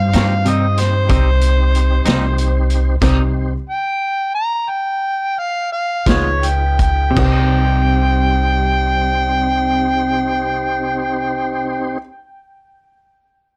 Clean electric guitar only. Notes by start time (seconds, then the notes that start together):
0.14 G3 C4 D#4
0.45 C3 G3 C4 D#4
1.09 C3 G3 C4 D#4
2.05 G3 C4 D#4
3.02 C3 G3 C4 D#4
6.07 G#3 B3 F4
7.11 C3
7.19 G3
7.25 C4
7.31 D#4